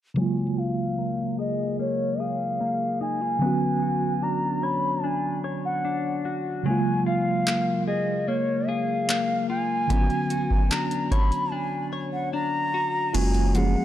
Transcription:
0.14 tine electric piano C#3 F#3 G#3, clean electric guitar F#3, bansuri G#5
0.20 tine electric piano A#3 F4
0.58 clean electric guitar F4, bansuri F5
0.98 clean electric guitar A#3
1.39 clean electric guitar G#4, bansuri D#5
1.79 clean electric guitar A#3, bansuri C#5
2.20 clean electric guitar G#4, bansuri F5
2.60 clean electric guitar A#3
3.01 clean electric guitar D#4, bansuri G#5
3.21 clean electric guitar F4
3.39 tine electric piano D3 F#3 B3, clean electric guitar B3
3.44 tine electric piano C#4 F#4
3.82 clean electric guitar F#4
4.23 clean electric guitar D4, bansuri A#5
4.63 clean electric guitar C#5, bansuri B5
5.04 clean electric guitar D4, bansuri G#5
5.44 clean electric guitar C#5
5.65 bansuri F#5
5.85 clean electric guitar D4
6.25 clean electric guitar F#4
6.63 tine electric piano C#3 F#3 G#3, clean electric guitar F#3, bansuri G#5
6.69 tine electric piano A#3 F4
7.06 clean electric guitar F4, bansuri F5
7.47 clean electric guitar A#3, clap
7.87 clean electric guitar G#4, bansuri D#5
8.28 clean electric guitar A#3, bansuri C#5
8.69 clean electric guitar G#4, bansuri F5
9.09 clean electric guitar A#3, clap
9.49 clean electric guitar F4, bansuri G#5
9.87 tine electric piano D3 F#3 B3, clean electric guitar B3, kick, closed hi-hat
9.93 tine electric piano C#4 F4
10.01 tine electric piano F#4
10.10 closed hi-hat
10.30 clean electric guitar F#4, closed hi-hat
10.51 kick
10.71 clean electric guitar D4, bansuri A#5, clap, closed hi-hat
10.91 closed hi-hat
11.12 clean electric guitar C#5, bansuri B5, kick, closed hi-hat
11.32 closed hi-hat
11.52 clean electric guitar D4, bansuri G#5
11.93 clean electric guitar C#5
12.13 bansuri F#5
12.33 clean electric guitar D4, bansuri A#5
12.74 clean electric guitar F#4
13.14 analog synth bass F#1, clean electric guitar F#3, tine electric piano G#3 A#3 C#4 F4 F#4, ambient pad G#4 G#5 A#5, bansuri G#5, closed hi-hat, crash
13.34 closed hi-hat
13.54 tine electric piano F3 G#3 A#3 C#4 G#4, clean electric guitar F4, bansuri F#5, closed hi-hat

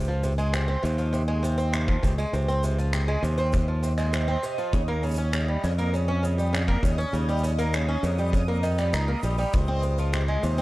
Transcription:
Already playing: fingered electric bass C#2, synth texture D#5 D#6
0.00 cabasa
0.04 twelve-string acoustic guitar F3, cabasa
0.23 twelve-string acoustic guitar C3, cabasa
0.38 twelve-string acoustic guitar G#3, cabasa
0.53 twelve-string acoustic guitar C3, finger snap, cabasa
0.68 twelve-string acoustic guitar C4
0.83 fingered electric bass D#2, twelve-string acoustic guitar C3, cabasa
0.98 twelve-string acoustic guitar F3, cabasa
1.13 twelve-string acoustic guitar C3, cabasa
1.28 twelve-string acoustic guitar G#3
1.43 twelve-string acoustic guitar C3, cabasa
1.58 twelve-string acoustic guitar C4, cabasa
1.73 twelve-string acoustic guitar C3, finger snap, cabasa
1.88 twelve-string acoustic guitar F3, kick
2.03 fingered electric bass C#2, twelve-string acoustic guitar C3, kick, cabasa
2.18 twelve-string acoustic guitar G#3, cabasa
2.33 fingered electric bass C#2, twelve-string acoustic guitar C3, cabasa
2.48 twelve-string acoustic guitar C4, cabasa
2.63 twelve-string acoustic guitar C3, cabasa
2.78 twelve-string acoustic guitar F3, cabasa
2.93 twelve-string acoustic guitar C3, finger snap, cabasa
3.08 twelve-string acoustic guitar G#3
3.23 fingered electric bass D#2, twelve-string acoustic guitar C3, cabasa
3.38 twelve-string acoustic guitar C4, cabasa
3.52 twelve-string acoustic guitar C3, kick, cabasa
3.68 twelve-string acoustic guitar F3
3.83 twelve-string acoustic guitar C3, cabasa
3.98 twelve-string acoustic guitar G#3, finger snap, cabasa
4.13 twelve-string acoustic guitar C3, finger snap, cabasa
4.28 twelve-string acoustic guitar C4
4.43 twelve-string acoustic guitar C3, cabasa
4.58 twelve-string acoustic guitar F3, cabasa
4.73 fingered electric bass D#2, twelve-string acoustic guitar C#3, kick, cabasa
4.88 twelve-string acoustic guitar A#3
5.03 twelve-string acoustic guitar C#3, cabasa
5.06 cabasa
5.09 cabasa
5.11 cabasa
5.14 cabasa
5.16 twelve-string acoustic guitar C#4, cabasa
5.19 cabasa
5.33 twelve-string acoustic guitar C#3, finger snap, cabasa
5.48 twelve-string acoustic guitar G3
5.64 fingered electric bass F2, twelve-string acoustic guitar C#3, cabasa
5.78 twelve-string acoustic guitar A#3, cabasa
5.93 twelve-string acoustic guitar C#3, cabasa
6.08 twelve-string acoustic guitar C#4
6.23 twelve-string acoustic guitar C#3, cabasa
6.38 twelve-string acoustic guitar G3, cabasa
6.53 twelve-string acoustic guitar C#3, finger snap, cabasa
6.68 twelve-string acoustic guitar A#3, kick
6.83 fingered electric bass D#2, twelve-string acoustic guitar C#3, kick, cabasa
6.98 twelve-string acoustic guitar C#4, cabasa
7.13 fingered electric bass D#2, twelve-string acoustic guitar C#3, cabasa
7.29 twelve-string acoustic guitar G3, cabasa
7.39 cabasa
7.43 twelve-string acoustic guitar C#3, cabasa
7.49 cabasa
7.59 twelve-string acoustic guitar A#3, cabasa
7.74 twelve-string acoustic guitar C#3, finger snap, cabasa
7.88 twelve-string acoustic guitar C#4
8.03 fingered electric bass F2, twelve-string acoustic guitar C#3, cabasa
8.18 twelve-string acoustic guitar G3, cabasa
8.33 twelve-string acoustic guitar C#3, kick, cabasa
8.48 twelve-string acoustic guitar A#3
8.63 twelve-string acoustic guitar D#3, cabasa
8.78 twelve-string acoustic guitar G3, finger snap, cabasa
8.93 fingered electric bass C#2, twelve-string acoustic guitar D#4, finger snap, cabasa
9.08 twelve-string acoustic guitar A#3
9.23 fingered electric bass A#1, twelve-string acoustic guitar G3, cabasa
9.38 twelve-string acoustic guitar G3, cabasa
9.40 cabasa
9.42 cabasa
9.45 cabasa
9.47 cabasa
9.50 cabasa
9.53 fingered electric bass C#2, twelve-string acoustic guitar C3, ambient pad G#3 F4 C5, kick, cabasa
9.68 twelve-string acoustic guitar C4
9.83 twelve-string acoustic guitar C3, cabasa
9.98 twelve-string acoustic guitar F3, cabasa
10.13 twelve-string acoustic guitar C3, finger snap, cabasa
10.28 twelve-string acoustic guitar G#3
10.43 fingered electric bass D#2, twelve-string acoustic guitar C3, cabasa
10.58 twelve-string acoustic guitar C4, cabasa

